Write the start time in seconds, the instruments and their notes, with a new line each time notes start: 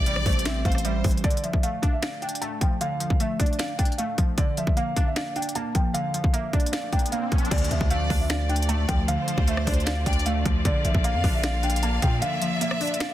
Already playing: 808-style bass A1, synth pluck C3 E3, string section E3 A3 G4 C5, violin section D5
0.06 synth pluck G3, grand piano D5, closed hi-hat
0.16 808-style bass A#1, cross-stick
0.26 808-style bass A1, synth pluck A3, grand piano C5, kick, closed hi-hat, open hi-hat
0.32 closed hi-hat
0.39 closed hi-hat
0.45 synth pluck C4, grand piano E5, finger snap, snare, closed hi-hat
0.65 808-style bass A1, synth pluck A3, violin section C5, grand piano F5, kick, closed hi-hat
0.72 cross-stick, closed hi-hat
0.78 closed hi-hat
0.84 synth pluck G3, grand piano E5, closed hi-hat
1.04 808-style bass A1, synth pluck E3, kick, closed hi-hat, open hi-hat
1.11 closed hi-hat
1.17 closed hi-hat
1.24 synth pluck D3, grand piano D5, kick, closed hi-hat
1.30 closed hi-hat
1.37 closed hi-hat
1.43 synth pluck F3, grand piano E5, closed hi-hat
1.53 kick
1.63 synth pluck A3, grand piano F5, closed hi-hat
1.82 synth pluck D4, kick, closed hi-hat
1.93 grand piano E5
2.02 synth pluck D5, grand piano F5, finger snap, snare, closed hi-hat
2.22 synth pluck D4, grand piano G5, closed hi-hat
2.29 closed hi-hat
2.35 closed hi-hat
2.42 synth pluck A3, grand piano A5, closed hi-hat
2.61 synth pluck F3, grand piano G5, kick, closed hi-hat
2.81 synth pluck D3, grand piano F5, closed hi-hat
3.00 synth pluck F3, closed hi-hat
3.10 kick
3.20 synth pluck A3, grand piano E5, closed hi-hat
3.39 synth pluck D4, grand piano D5, kick, closed hi-hat
3.46 closed hi-hat
3.53 closed hi-hat
3.59 synth pluck D5, grand piano F5, finger snap, snare, closed hi-hat
3.78 synth pluck D4, grand piano G5, kick, closed hi-hat
3.85 closed hi-hat
3.92 closed hi-hat
3.98 synth pluck A3, grand piano F5, closed hi-hat
4.18 synth pluck F3, kick, closed hi-hat
4.38 synth pluck D3, grand piano D5, kick, closed hi-hat
4.57 synth pluck F3, grand piano E5, closed hi-hat
4.67 kick
4.77 synth pluck A#3, grand piano F5, closed hi-hat
4.96 synth pluck D4, kick, closed hi-hat
5.07 grand piano E5
5.16 synth pluck D5, grand piano F5, finger snap, snare, closed hi-hat
5.36 synth pluck D4, grand piano G5, closed hi-hat
5.42 closed hi-hat
5.49 closed hi-hat
5.55 synth pluck A#3, grand piano A5, closed hi-hat
5.75 synth pluck F3, grand piano G5, kick, closed hi-hat
5.94 synth pluck D3, grand piano F5, closed hi-hat, riser
6.14 synth pluck F3, closed hi-hat
6.24 kick
6.33 synth pluck A#3, grand piano E5, closed hi-hat
6.53 synth pluck D4, grand piano D5, kick, closed hi-hat
6.60 closed hi-hat
6.66 closed hi-hat
6.72 synth pluck D5, grand piano F5, finger snap, snare, closed hi-hat
6.93 synth pluck D4, grand piano G5, kick, closed hi-hat
6.99 closed hi-hat
7.06 closed hi-hat
7.12 synth pluck A#3, grand piano F5, closed hi-hat
7.32 synth pluck F3, kick, closed hi-hat
7.38 closed hi-hat
7.45 closed hi-hat
7.51 808-style bass D2, synth pluck D3, string section D3 A3 F4 D5, grand piano D5, kick, closed hi-hat, crash
7.58 closed hi-hat
7.64 closed hi-hat
7.71 808-style bass D2, synth pluck F3, grand piano E5, closed hi-hat
7.81 808-style bass D2, kick
7.91 synth pluck A3, violin section D5, grand piano F5, closed hi-hat
8.10 808-style bass D2, synth pluck D4, kick, open hi-hat
8.20 grand piano E5
8.30 synth pluck D5, violin section D5, grand piano F5, finger snap, snare, closed hi-hat
8.49 synth pluck D4, grand piano G5, closed hi-hat
8.56 closed hi-hat
8.62 closed hi-hat
8.69 synth pluck A3, grand piano A5, closed hi-hat
8.88 808-style bass D2, synth pluck F3, grand piano G5, kick, closed hi-hat
9.08 synth pluck D3, violin section C5, grand piano F5, closed hi-hat
9.27 synth pluck F3, closed hi-hat
9.38 808-style bass D2, kick
9.48 synth pluck A3, grand piano E5, closed hi-hat
9.57 cross-stick
9.67 808-style bass D2, synth pluck D4, grand piano D5, kick, closed hi-hat, open hi-hat
9.74 closed hi-hat
9.80 closed hi-hat
9.86 synth pluck D5, grand piano F5, finger snap, snare, closed hi-hat
10.06 808-style bass D2, synth pluck D4, violin section D5, grand piano G5, kick, closed hi-hat
10.13 closed hi-hat
10.19 closed hi-hat
10.26 synth pluck A3, grand piano F5, closed hi-hat
10.45 808-style bass D2, synth pluck F3, kick, closed hi-hat
10.65 808-style bass A#1, synth pluck D3, string section A#3, grand piano D5, kick, closed hi-hat
10.85 808-style bass A#1, synth pluck F3, grand piano E5, closed hi-hat
10.95 808-style bass A#1, kick
11.04 synth pluck A#3, grand piano F5, violin section F5, closed hi-hat
11.14 808-style bass F2
11.24 808-style bass A#1, synth pluck D4, kick, open hi-hat
11.34 grand piano E5
11.43 synth pluck D5, violin section F5, grand piano F5, finger snap, snare, closed hi-hat
11.63 synth pluck D4, grand piano G5, closed hi-hat
11.70 closed hi-hat
11.76 closed hi-hat
11.83 synth pluck A#3, grand piano A5, closed hi-hat
12.02 808-style bass A#2, synth pluck F3, grand piano G5, kick, closed hi-hat
12.22 synth pluck D3, violin section E5, grand piano F5, closed hi-hat
12.41 synth pluck F3, closed hi-hat
12.61 synth pluck A#3, grand piano E5, closed hi-hat
12.71 cross-stick
12.80 synth pluck D4, grand piano D5, closed hi-hat, open hi-hat
12.87 closed hi-hat
12.94 closed hi-hat
13.00 synth pluck D5, grand piano F5, finger snap, snare, closed hi-hat